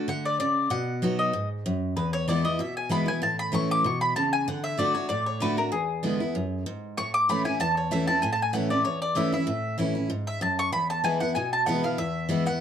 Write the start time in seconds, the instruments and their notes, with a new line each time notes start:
0.08 steel-string acoustic guitar D3, mandolin F#5
0.25 mandolin D5
0.40 steel-string acoustic guitar C#3, mandolin D5
0.70 steel-string acoustic guitar B2, mandolin F#5
1.02 steel-string acoustic guitar F#3 B3 D#4 F#4
1.19 mandolin D#5
1.33 steel-string acoustic guitar G#2
1.66 steel-string acoustic guitar F#2
1.97 steel-string acoustic guitar E2, mandolin B4
2.13 mandolin C#5
2.28 steel-string acoustic guitar E3 G#3 B3 E4, mandolin D5
2.44 steel-string acoustic guitar B3 E4, mandolin D#5
2.59 steel-string acoustic guitar B2, mandolin E5
2.77 mandolin G#5
2.89 steel-string acoustic guitar E3 G#3 B3 E4, mandolin B5
3.06 steel-string acoustic guitar B3 E4, mandolin G#5
3.22 steel-string acoustic guitar A2, mandolin A5
3.39 mandolin B5
3.52 steel-string acoustic guitar E3 A3 C#4 E4, mandolin C#6
3.71 mandolin D6
3.84 steel-string acoustic guitar B2, mandolin C#6
4.01 mandolin B5
4.16 steel-string acoustic guitar C#3, mandolin A5
4.33 mandolin G#5
4.48 steel-string acoustic guitar D3, mandolin F#5
4.64 mandolin E5
4.78 steel-string acoustic guitar D3 A3 D4 F#4, mandolin D5
4.95 steel-string acoustic guitar D4 F#4, mandolin C#5
5.09 steel-string acoustic guitar A2, mandolin D5
5.26 mandolin C#5
5.40 steel-string acoustic guitar D3 A3 D4 F#4, mandolin B4
5.57 steel-string acoustic guitar F#4, mandolin A#4
5.72 steel-string acoustic guitar E2, mandolin G#4
6.03 steel-string acoustic guitar D3 G#3 B3 E4
6.20 steel-string acoustic guitar B3 E4
6.35 steel-string acoustic guitar F#2
6.66 steel-string acoustic guitar G#2
6.97 steel-string acoustic guitar A2, mandolin C#6
7.14 mandolin D6
7.29 steel-string acoustic guitar E3 A3 C#4 E4, mandolin B5
7.45 steel-string acoustic guitar C#4 E4, mandolin G#5
7.60 steel-string acoustic guitar E2, mandolin A5
7.77 mandolin C#5
7.91 steel-string acoustic guitar E3 A3 C#4 E4, mandolin E5
8.07 steel-string acoustic guitar C#4 E4, mandolin A5
8.22 steel-string acoustic guitar A2, mandolin G#5
8.33 mandolin A5
8.42 mandolin G#5
8.53 steel-string acoustic guitar E3 A3 C#4 E4, mandolin F#5
8.70 steel-string acoustic guitar C#4 E4, mandolin D5
8.85 steel-string acoustic guitar E2, mandolin C#5
9.02 mandolin D5
9.15 steel-string acoustic guitar E3 A3 C#4 E4, mandolin E5
9.33 steel-string acoustic guitar C#4 E4, mandolin E5
9.47 steel-string acoustic guitar A2
9.78 steel-string acoustic guitar E3 A3 C#4 E4
9.95 steel-string acoustic guitar C#4 E4
10.10 steel-string acoustic guitar G#2
10.27 mandolin E5
10.41 steel-string acoustic guitar F#2, mandolin A5
10.59 mandolin C#6
10.72 steel-string acoustic guitar E2, mandolin B5
10.90 mandolin A5
11.04 steel-string acoustic guitar E3 G#3 B3 E4, mandolin G#5
11.20 steel-string acoustic guitar B3 E4, mandolin F#5
11.35 steel-string acoustic guitar B2, mandolin G#5
11.53 mandolin A5
11.66 steel-string acoustic guitar E3 G#3 B3 E4, mandolin F#5
11.83 steel-string acoustic guitar B3 E4, mandolin F5
11.98 steel-string acoustic guitar E2, mandolin E5
12.29 steel-string acoustic guitar E3 G#3 B3 E4
12.46 steel-string acoustic guitar B3 E4, mandolin F#5